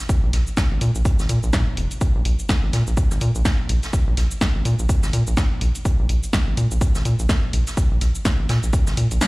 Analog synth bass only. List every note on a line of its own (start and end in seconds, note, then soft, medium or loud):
0.23 0.31 A#1 loud
0.33 0.43 A#1 medium
0.71 0.79 G#1 medium
0.81 0.91 A#2 medium
0.95 1.03 A#1 loud
1.19 1.27 G#1 loud
1.29 1.39 A#2 medium
1.43 1.51 A#1 loud
1.53 1.63 A#2 medium
1.77 1.87 F1 medium
2.15 2.23 A#1 loud
2.25 2.35 A#1 medium
2.63 2.71 G#1 medium
2.73 2.83 A#2 medium
2.87 2.95 A#1 loud
3.11 3.19 G#1 loud
3.21 3.31 A#2 loud
3.35 3.43 A#1 loud
3.69 3.79 A#1 medium
4.07 4.15 A#1 loud
4.17 4.27 A#1 medium
4.55 4.63 G#1 medium
4.65 4.75 A#2 medium
4.79 4.87 A#1 loud
5.03 5.11 G#1 loud
5.13 5.23 A#2 loud
5.27 5.35 A#1 loud
5.61 5.71 A#1 medium
5.99 6.07 A#1 loud
6.09 6.19 A#1 medium
6.47 6.55 G#1 medium
6.57 6.67 A#2 medium
6.71 6.79 A#1 loud
6.95 7.03 G#1 loud
7.05 7.15 A#2 loud
7.19 7.27 A#1 loud
7.53 7.63 A#1 medium
7.91 7.99 A#1 loud
8.01 8.11 A#1 medium
8.39 8.47 G#1 medium
8.49 8.59 A#2 medium
8.63 8.71 A#1 loud
8.87 8.95 G#1 loud
8.97 9.07 A#2 medium
9.11 9.19 A#1 loud